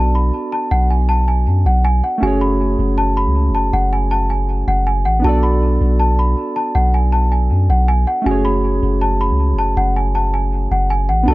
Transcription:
0.00 0.31 B1 loud
0.00 2.16 B3 medium
0.00 2.17 D4 medium
0.00 2.18 F#4 medium
0.00 2.19 A4 medium
0.00 2.21 D5 medium
0.00 0.13 A5 medium
0.15 0.50 B5 medium
0.52 0.70 A5 medium
0.71 1.48 B1 loud
0.71 0.89 F#5 medium
0.90 1.08 G#5 medium
1.09 1.26 A5 medium
1.28 1.63 G#5 medium
1.47 1.65 F#2 loud
1.66 2.02 B1 loud
1.66 1.83 F#5 medium
1.85 2.02 G#5 loud
2.04 2.21 F#5 medium
2.18 5.18 A3 medium
2.18 5.19 C#4 medium
2.22 2.77 F#1 loud
2.22 5.20 F#4 medium
2.22 5.21 G#4 medium
2.22 2.40 G#5 loud
2.27 5.23 C#5 medium
2.41 2.94 B5 medium
2.79 3.28 F#1 loud
2.98 3.15 A5 medium
3.17 3.52 B5 medium
3.27 3.52 C#2 loud
3.50 3.72 F#1 loud
3.55 3.72 A5 medium
3.73 4.64 F#1 loud
3.73 3.91 F#5 medium
3.93 4.10 G#5 medium
4.11 4.28 A5 medium
4.30 4.65 G#5 medium
4.68 5.07 F#1 loud
4.68 4.85 F#5 medium
4.87 5.04 G#5 medium
5.05 5.23 A1 loud
5.05 5.23 F#5 medium
5.19 8.20 B3 medium
5.19 8.21 D4 medium
5.24 5.79 B1 loud
5.24 8.22 F#4 medium
5.24 8.23 A4 medium
5.24 5.42 A5 loud
5.29 8.24 D5 medium
5.43 5.96 B5 medium
5.81 6.35 B1 loud
6.00 6.17 A5 medium
6.19 6.54 B5 medium
6.56 6.74 A5 medium
6.75 7.52 B1 loud
6.75 6.92 F#5 medium
6.94 7.11 G#5 medium
7.12 7.30 A5 medium
7.32 7.67 G#5 medium
7.51 7.69 F#2 loud
7.70 8.06 B1 loud
7.70 7.87 F#5 medium
7.88 8.06 G#5 loud
8.07 8.25 F#5 medium
8.22 11.22 A3 medium
8.22 11.23 C#4 medium
8.26 8.81 F#1 loud
8.26 11.24 F#4 medium
8.26 11.25 G#4 medium
8.26 8.44 G#5 loud
8.31 11.26 C#5 medium
8.45 8.98 B5 medium
8.83 9.32 F#1 loud
9.01 9.19 A5 medium
9.21 9.56 B5 medium
9.30 9.55 C#2 loud
9.54 9.76 F#1 loud
9.59 9.76 A5 medium
9.77 10.68 F#1 loud
9.77 9.94 F#5 medium
9.96 10.14 G#5 medium
10.15 10.32 A5 medium
10.34 10.69 G#5 medium
10.71 11.11 F#1 loud
10.71 10.89 F#5 medium
10.90 11.08 G#5 medium
11.09 11.27 A1 loud
11.09 11.26 F#5 medium
11.23 11.34 B3 medium
11.23 11.34 D4 medium
11.28 11.34 B1 loud
11.28 11.34 F#4 medium
11.28 11.34 A4 medium
11.28 11.34 A5 loud

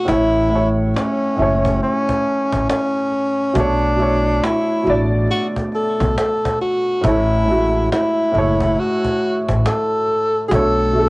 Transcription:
0.05 0.91 A1 medium
0.05 0.47 A2 medium
0.05 0.48 A3 medium
0.05 0.69 E4 loud
0.05 cajon bass loud
0.09 0.49 E4 medium
0.09 0.50 C#5 medium
0.49 1.31 A2 medium
0.49 1.32 A3 medium
0.49 cajon slap soft
0.53 1.33 E4 medium
0.53 1.34 C#5 medium
0.96 1.78 C#4 medium
0.96 cajon slap medium
1.35 1.78 F#1 medium
1.35 2.98 A2 medium
1.35 2.99 A3 medium
1.35 3.00 E4 medium
1.35 cajon slap soft
1.42 3.01 C#5 medium
1.65 cajon bass medium
1.80 2.65 C#4 loud
1.80 cajon slap soft
2.09 cajon bass medium
2.24 cajon slap soft
2.52 2.67 A1 medium
2.52 cajon bass medium
2.52 cajon slap soft
2.69 3.58 C#4 medium
2.69 cajon slap loud
3.12 cajon slap soft
3.40 cajon slap soft
3.53 4.39 B1 loud
3.53 3.95 B2 medium
3.53 3.96 A3 medium
3.53 4.46 D4 loud
3.53 3.97 D4 medium
3.53 cajon bass loud
3.60 3.98 C#5 medium
3.96 4.78 B2 medium
3.96 4.79 A3 medium
3.96 cajon slap soft
4.00 4.80 D4 medium
4.00 4.81 C#5 medium
4.44 5.08 E4 medium
4.44 cajon slap loud
4.83 5.26 A1 medium
4.83 6.46 B2 medium
4.83 6.47 A3 medium
4.83 cajon slap soft
4.88 6.48 D4 medium
4.88 6.49 D5 medium
5.27 5.47 F#4 medium
5.27 cajon slap soft
5.56 cajon bass medium
5.72 6.14 A4 medium
5.72 cajon slap soft
6.01 6.15 B1 medium
6.01 cajon bass medium
6.01 cajon slap soft
6.18 6.58 A4 medium
6.18 cajon slap loud
6.45 cajon bass loud
6.60 7.06 F#4 medium
6.60 cajon slap soft
6.89 cajon slap soft
7.01 7.87 A1 loud
7.01 7.43 A2 medium
7.01 7.44 A3 medium
7.01 7.91 E4 loud
7.01 cajon bass loud
7.05 7.45 E4 medium
7.05 7.46 C#5 medium
7.45 8.26 A2 medium
7.45 7.55 G#3 soft
7.45 cajon slap soft
7.49 8.28 E4 medium
7.49 8.30 F#4 medium
7.54 8.31 A3 medium
7.92 8.81 E4 medium
7.92 cajon slap loud
8.32 8.74 F#1 medium
8.32 9.94 A2 medium
8.32 9.95 A3 medium
8.32 9.96 E4 medium
8.32 cajon slap soft
8.38 9.97 C#5 medium
8.61 cajon bass medium
8.76 9.43 F#4 medium
8.76 cajon slap soft
9.05 cajon bass medium
9.20 cajon slap soft
9.49 9.63 A1 medium
9.49 cajon bass medium
9.49 cajon slap soft
9.66 10.43 A4 medium
9.66 cajon slap loud
10.08 cajon slap soft
10.48 11.09 B1 loud
10.48 10.90 B2 medium
10.48 10.91 A3 medium
10.48 10.55 G#4 medium
10.48 cajon bass loud
10.53 10.92 D4 medium
10.53 11.09 A4 loud
10.53 10.93 C#5 medium
10.93 11.09 B2 medium
10.93 11.09 A3 medium
10.93 cajon slap soft
10.97 11.09 D4 medium
10.97 11.09 A4 medium

